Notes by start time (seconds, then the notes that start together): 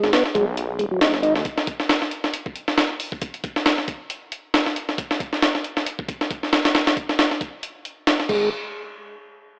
Already playing: G#3
0.03 G#1, snare
0.13 B3, snare, closed hi-hat
0.26 snare
0.35 B1 G#3, kick, closed hi-hat
0.57 closed hi-hat
0.79 D#1 G#3, closed hi-hat
0.91 F#3
1.01 D#4, snare, closed hi-hat
1.14 G#1, snare
1.23 D#4, closed hi-hat
1.35 D#2, snare
1.45 kick, closed hi-hat
1.58 snare
1.67 kick, closed hi-hat
1.80 snare
1.89 snare, closed hi-hat
2.02 snare
2.11 closed hi-hat
2.24 snare
2.34 closed hi-hat
2.46 kick
2.56 closed hi-hat
2.68 snare
2.78 snare, closed hi-hat
3.00 open hi-hat
3.12 kick
3.22 kick, closed hi-hat
3.34 closed hi-hat
3.44 kick, closed hi-hat
3.56 snare
3.66 snare, closed hi-hat
3.78 snare
3.88 kick, closed hi-hat
4.10 closed hi-hat
4.32 closed hi-hat
4.54 snare, closed hi-hat
4.66 snare
4.76 closed hi-hat
4.89 snare
4.98 kick, closed hi-hat
5.11 snare
5.20 kick, closed hi-hat
5.33 snare
5.42 snare, closed hi-hat
5.55 snare
5.64 closed hi-hat
5.77 snare
5.86 closed hi-hat
5.99 kick
6.09 kick, closed hi-hat
6.21 snare
6.31 kick, closed hi-hat
6.43 snare
6.53 snare, closed hi-hat
6.65 snare, closed hi-hat
6.75 snare, closed hi-hat
6.87 snare, closed hi-hat
6.97 kick, closed hi-hat
7.09 snare
7.19 snare, closed hi-hat
7.31 snare
7.41 kick, closed hi-hat
7.63 closed hi-hat
7.85 closed hi-hat
8.07 snare, closed hi-hat
8.20 snare
8.29 G#1 G#3, kick, crash